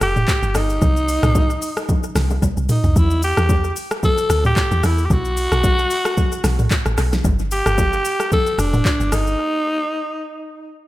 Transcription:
0.01 0.25 F1 loud
0.01 0.58 G4 loud
0.01 cross-stick medium
0.01 open hi-hat medium
0.01 shaker loud
0.16 mid tom medium
0.16 low bongo medium
0.16 shaker soft
0.28 kick medium
0.28 clap loud
0.28 high bongo medium
0.28 shaker medium
0.43 0.54 G1 medium
0.43 shaker medium
0.55 0.79 G1 loud
0.55 2.16 D#4 loud
0.55 cross-stick loud
0.55 open hi-hat medium
0.55 low bongo medium
0.55 shaker loud
0.70 shaker medium
0.82 1.19 C2 loud
0.82 kick loud
0.82 low conga medium
0.82 shaker medium
0.96 shaker soft
1.08 open hi-hat medium
1.08 shaker loud
1.23 1.58 C2 medium
1.23 cross-stick loud
1.23 mid tom medium
1.23 low bongo medium
1.23 shaker medium
1.35 kick loud
1.35 high bongo medium
1.35 low bongo medium
1.35 low conga medium
1.35 shaker loud
1.50 shaker medium
1.62 open hi-hat medium
1.62 shaker loud
1.77 cross-stick medium
1.77 shaker medium
1.89 kick loud
1.89 low conga medium
1.89 shaker medium
2.03 shaker medium
2.15 2.40 C2 loud
2.15 cross-stick loud
2.15 snare medium
2.15 open hi-hat medium
2.15 shaker loud
2.30 low bongo medium
2.30 shaker soft
2.42 2.56 B1 medium
2.42 kick medium
2.42 high tom medium
2.42 high bongo medium
2.42 shaker medium
2.57 2.68 C2 medium
2.57 shaker medium
2.69 2.99 D#4 medium
2.69 mid tom loud
2.69 open hi-hat medium
2.69 low bongo medium
2.69 shaker loud
2.84 2.95 C2 medium
2.84 floor tom loud
2.84 shaker medium
2.96 3.33 E2 loud
2.96 3.24 E4 loud
2.96 kick loud
2.96 low conga medium
2.96 shaker medium
3.10 shaker medium
3.23 3.73 G4 loud
3.23 open hi-hat medium
3.23 shaker loud
3.37 3.72 E2 loud
3.37 cross-stick loud
3.37 shaker medium
3.49 kick loud
3.49 high bongo medium
3.49 low bongo medium
3.49 low conga medium
3.49 shaker medium
3.64 shaker medium
3.76 open hi-hat medium
3.76 shaker loud
3.91 cross-stick loud
3.91 shaker medium
4.03 4.43 A4 loud
4.03 kick loud
4.03 low conga medium
4.03 shaker medium
4.18 shaker medium
4.30 4.54 D2 medium
4.30 cross-stick loud
4.30 open hi-hat medium
4.30 shaker loud
4.45 4.82 G4 loud
4.45 mid tom medium
4.45 low bongo medium
4.45 shaker soft
4.56 kick medium
4.56 clap loud
4.56 high bongo medium
4.56 shaker medium
4.71 4.82 E2 loud
4.71 shaker medium
4.83 5.08 E2 loud
4.83 5.07 E4 medium
4.83 cross-stick medium
4.83 open hi-hat medium
4.83 low bongo medium
4.83 shaker loud
4.98 shaker medium
5.06 5.13 G4 medium
5.10 5.48 B1 loud
5.10 6.99 F#4 loud
5.10 kick loud
5.10 low conga medium
5.10 shaker medium
5.25 shaker medium
5.37 open hi-hat medium
5.37 shaker loud
5.52 5.87 B1 loud
5.52 cross-stick loud
5.52 shaker medium
5.64 kick medium
5.64 high bongo medium
5.64 low bongo medium
5.64 low conga medium
5.64 shaker loud
5.79 shaker medium
5.90 open hi-hat medium
5.90 shaker loud
6.05 cross-stick loud
6.05 shaker medium
6.17 kick loud
6.17 low conga medium
6.17 shaker medium
6.32 shaker medium
6.44 6.68 B1 medium
6.44 cross-stick loud
6.44 snare medium
6.44 open hi-hat medium
6.44 shaker loud
6.59 mid tom medium
6.59 low bongo medium
6.59 shaker soft
6.71 kick medium
6.71 clap loud
6.71 high bongo medium
6.71 shaker medium
6.86 6.97 A1 loud
6.86 cross-stick medium
6.86 shaker medium
6.98 7.22 B1 medium
6.98 cross-stick loud
6.98 open hi-hat medium
6.98 low bongo medium
6.98 shaker loud
7.13 snare medium
7.13 shaker soft
7.24 7.62 G1 loud
7.24 kick loud
7.24 low conga medium
7.24 shaker medium
7.39 shaker medium
7.51 8.28 G4 loud
7.51 open hi-hat medium
7.51 shaker loud
7.66 8.01 G1 loud
7.66 cross-stick loud
7.66 shaker medium
7.78 kick loud
7.78 high bongo medium
7.78 low bongo medium
7.78 low conga medium
7.78 shaker loud
7.93 shaker medium
8.05 open hi-hat medium
8.05 shaker loud
8.20 cross-stick medium
8.20 shaker medium
8.32 8.61 A4 loud
8.32 kick loud
8.32 low conga medium
8.32 shaker medium
8.46 shaker medium
8.58 8.82 F1 loud
8.58 9.15 D4 loud
8.58 cross-stick medium
8.58 open hi-hat medium
8.58 shaker loud
8.73 mid tom medium
8.73 low bongo medium
8.73 shaker soft
8.85 kick loud
8.85 clap loud
8.85 high bongo medium
8.85 shaker medium
9.00 9.11 G1 medium
9.00 shaker medium
9.12 9.36 G1 loud
9.12 10.73 D#4 loud
9.12 cross-stick loud
9.12 open hi-hat medium
9.12 low bongo medium
9.12 shaker loud
9.27 shaker soft

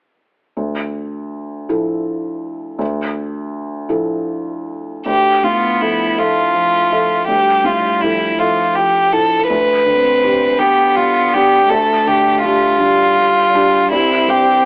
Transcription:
0.57 1.65 D2 soft
1.69 2.76 F3 soft
1.69 2.76 E4 soft
1.69 2.76 A4 soft
2.79 3.87 D2 soft
3.89 5.02 F3 soft
3.89 5.02 E4 soft
3.89 5.03 A4 soft
5.06 7.24 D2 soft
5.06 5.45 G4 soft
5.43 6.04 A2 soft
5.43 6.21 B3 medium
5.43 5.83 F4 soft
5.81 6.15 F3 soft
5.81 6.19 E4 soft
5.81 6.15 E4 soft
5.81 6.15 A4 soft
6.17 6.51 F3 soft
6.17 7.29 A3 soft
6.17 7.27 F4 soft
6.17 6.51 A4 soft
6.17 6.51 E5 soft
6.55 6.90 F3 soft
6.91 7.25 F3 soft
6.91 7.26 A4 soft
6.91 7.25 E5 soft
7.27 9.46 D2 soft
7.27 8.39 G3 soft
7.27 7.66 G4 soft
7.64 8.25 A2 soft
7.64 8.02 F4 soft
8.01 8.37 F3 soft
8.01 8.40 E4 soft
8.01 8.37 E4 soft
8.01 8.37 A4 soft
8.39 8.73 F3 soft
8.39 9.48 F3 soft
8.39 8.76 F4 soft
8.39 8.74 A4 soft
8.39 8.73 E5 soft
8.74 9.11 F3 soft
8.74 9.14 G4 soft
9.12 9.46 F3 soft
9.12 9.46 E4 soft
9.12 9.48 A4 soft
9.12 9.46 A4 soft
9.49 11.66 D2 soft
9.49 10.60 B4 medium
9.86 10.45 D3 soft
9.86 10.62 C4 medium
10.23 10.56 G3 soft
10.23 10.57 D4 soft
10.23 10.57 G4 soft
10.59 10.93 G3 soft
10.59 11.68 B3 soft
10.59 10.93 D4 soft
10.59 10.97 G4 soft
10.59 10.93 G4 soft
10.96 11.33 G3 soft
10.96 11.34 F4 soft
11.33 11.67 G3 soft
11.33 11.67 D4 soft
11.33 11.71 G4 soft
11.33 11.67 G4 soft
11.69 13.89 D2 soft
11.69 12.80 A3 medium
11.69 12.09 A4 soft
12.06 12.65 D3 soft
12.06 12.43 G4 soft
12.44 12.76 G3 soft
12.44 12.76 D4 soft
12.44 13.90 F4 medium
12.44 12.77 G4 soft
12.79 13.94 G3 medium
12.79 13.13 G3 soft
12.79 13.13 D4 soft
12.79 13.13 G4 soft
13.17 13.53 G3 soft
13.54 13.89 G3 soft
13.54 13.89 D4 soft
13.54 13.89 G4 soft
13.92 14.65 C2 medium
13.92 14.65 C4 medium
13.92 14.30 E4 soft
14.28 14.65 G2 soft
14.28 14.65 G4 soft

